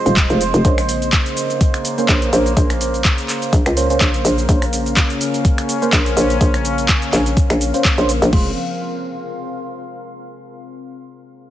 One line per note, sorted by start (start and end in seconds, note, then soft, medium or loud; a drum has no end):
0.00 0.61 F3 medium
0.00 0.61 G#3 medium
0.00 0.65 C4 medium
0.00 2.35 G#4 medium
0.00 4.45 C5 medium
0.00 1.25 D#5 medium
0.00 8.33 C6 medium
0.06 0.28 D#1 medium
0.06 0.19 G#3 medium
0.06 0.19 F4 medium
0.06 0.19 C5 medium
0.06 closed hi-hat soft
0.06 shaker soft
0.17 kick loud
0.17 clap loud
0.17 closed hi-hat medium
0.17 shaker soft
0.30 0.52 F1 medium
0.30 0.43 G#3 loud
0.30 0.43 F4 medium
0.30 0.43 C5 loud
0.30 closed hi-hat soft
0.30 shaker soft
0.41 open hi-hat loud
0.41 shaker medium
0.54 0.63 F1 loud
0.54 closed hi-hat soft
0.54 shaker soft
0.65 1.11 A#1 medium
0.65 8.29 C#3 medium
0.65 8.29 A#3 medium
0.65 0.80 A#3 medium
0.65 0.80 C#4 medium
0.65 0.80 C5 medium
0.65 kick loud
0.65 closed hi-hat medium
0.65 shaker soft
0.78 finger snap medium
0.78 open hi-hat medium
0.78 shaker soft
0.89 open hi-hat loud
0.89 shaker medium
1.02 closed hi-hat soft
1.02 shaker soft
1.13 kick loud
1.13 clap loud
1.13 closed hi-hat medium
1.13 shaker soft
1.22 8.33 A#4 medium
1.22 closed hi-hat soft
1.27 shaker soft
1.37 open hi-hat loud
1.37 shaker medium
1.50 closed hi-hat soft
1.50 shaker soft
1.60 8.33 F5 medium
1.60 kick loud
1.60 closed hi-hat medium
1.60 shaker soft
1.74 finger snap medium
1.74 closed hi-hat medium
1.74 shaker soft
1.85 open hi-hat loud
1.85 shaker medium
1.98 2.30 A#3 medium
1.98 2.30 C#4 medium
1.98 2.30 C5 medium
1.98 closed hi-hat soft
1.98 shaker soft
2.09 2.31 A#1 medium
2.09 kick loud
2.09 clap loud
2.09 closed hi-hat medium
2.09 shaker soft
2.22 closed hi-hat soft
2.22 shaker soft
2.33 2.55 A#1 medium
2.33 2.54 A#3 medium
2.33 2.54 C#4 medium
2.33 2.54 C5 medium
2.33 open hi-hat loud
2.33 shaker medium
2.46 closed hi-hat soft
2.46 shaker soft
2.57 3.03 A#1 loud
2.57 2.72 A#3 medium
2.57 2.72 C#4 medium
2.57 2.72 C5 medium
2.57 kick loud
2.57 closed hi-hat medium
2.57 shaker soft
2.70 finger snap medium
2.70 closed hi-hat medium
2.70 shaker soft
2.81 open hi-hat loud
2.81 shaker medium
2.94 closed hi-hat soft
2.94 shaker soft
3.05 kick loud
3.05 clap loud
3.05 closed hi-hat medium
3.05 shaker soft
3.18 closed hi-hat soft
3.18 shaker soft
3.29 clap soft
3.29 open hi-hat loud
3.29 shaker medium
3.42 closed hi-hat soft
3.42 shaker soft
3.53 3.64 A#1 loud
3.53 kick loud
3.53 closed hi-hat medium
3.53 shaker soft
3.66 3.99 C#2 medium
3.66 finger snap medium
3.66 closed hi-hat medium
3.66 shaker soft
3.77 3.88 A#3 medium
3.77 3.88 C#4 medium
3.77 3.88 C5 medium
3.77 open hi-hat loud
3.77 shaker medium
3.90 4.13 A#3 medium
3.90 4.13 C#4 medium
3.90 4.13 C5 medium
3.90 closed hi-hat soft
3.90 shaker soft
4.01 4.23 A#1 medium
4.01 kick loud
4.01 clap loud
4.01 closed hi-hat medium
4.01 shaker soft
4.14 closed hi-hat soft
4.14 shaker soft
4.25 4.47 A#1 loud
4.25 open hi-hat loud
4.25 shaker medium
4.38 closed hi-hat soft
4.38 shaker soft
4.49 4.95 A#1 loud
4.49 4.64 A#3 medium
4.49 8.29 C#4 medium
4.49 4.64 C#4 medium
4.49 4.64 C5 medium
4.49 kick loud
4.49 closed hi-hat medium
4.49 shaker soft
4.62 finger snap medium
4.62 open hi-hat medium
4.62 shaker soft
4.73 open hi-hat loud
4.73 shaker medium
4.86 closed hi-hat soft
4.86 shaker soft
4.97 kick loud
4.97 clap loud
4.97 closed hi-hat medium
4.97 shaker soft
5.10 closed hi-hat medium
5.10 shaker soft
5.21 open hi-hat loud
5.21 shaker medium
5.34 closed hi-hat soft
5.34 shaker soft
5.45 kick loud
5.45 closed hi-hat medium
5.45 shaker soft
5.58 finger snap medium
5.58 closed hi-hat medium
5.58 shaker soft
5.69 open hi-hat loud
5.69 shaker medium
5.82 6.14 A#3 medium
5.82 6.14 C#4 medium
5.82 6.14 C5 medium
5.82 closed hi-hat soft
5.82 shaker soft
5.93 6.15 A#1 medium
5.93 kick loud
5.93 clap loud
5.93 closed hi-hat medium
5.93 shaker soft
6.06 closed hi-hat medium
6.06 shaker soft
6.17 6.39 A#1 loud
6.17 6.38 A#3 medium
6.17 6.38 C#4 medium
6.17 6.38 C5 medium
6.17 open hi-hat loud
6.17 shaker medium
6.30 closed hi-hat soft
6.30 shaker soft
6.41 6.87 A#1 medium
6.41 6.56 A#3 medium
6.41 6.56 C#4 medium
6.41 6.56 C5 medium
6.41 kick loud
6.41 closed hi-hat medium
6.41 shaker soft
6.54 finger snap medium
6.54 closed hi-hat medium
6.54 shaker soft
6.65 open hi-hat loud
6.65 shaker medium
6.78 closed hi-hat soft
6.78 shaker soft
6.89 kick loud
6.89 clap loud
6.89 closed hi-hat medium
6.89 shaker soft
7.02 closed hi-hat medium
7.02 shaker soft
7.13 7.48 A#1 loud
7.13 clap soft
7.13 open hi-hat loud
7.13 shaker medium
7.26 closed hi-hat soft
7.26 shaker soft
7.37 kick loud
7.37 open hi-hat medium
7.37 shaker soft
7.50 7.72 A#1 loud
7.50 finger snap medium
7.50 closed hi-hat medium
7.50 shaker soft
7.61 open hi-hat loud
7.61 shaker medium
7.74 7.87 A#3 medium
7.74 7.87 C#4 medium
7.74 7.87 C5 medium
7.74 closed hi-hat soft
7.74 shaker soft
7.85 kick loud
7.85 clap loud
7.85 closed hi-hat medium
7.85 shaker soft
7.98 8.20 A#1 loud
7.98 8.11 A#3 loud
7.98 8.11 C#4 medium
7.98 8.11 C5 loud
7.98 closed hi-hat medium
7.98 shaker soft
8.09 open hi-hat loud
8.09 shaker medium
8.22 8.31 A#1 loud
8.22 closed hi-hat soft
8.22 shaker soft
8.33 8.55 F1 loud
8.33 8.55 F3 medium
8.33 8.51 G#3 medium
8.33 8.55 C4 medium
8.33 10.21 C4 medium
8.33 8.51 F4 medium
8.33 8.55 G#4 medium
8.33 8.51 C5 medium
8.33 8.55 F5 medium
8.33 kick loud
8.33 crash medium
8.41 10.21 G#4 medium
8.48 10.21 F5 medium
8.55 10.21 C6 medium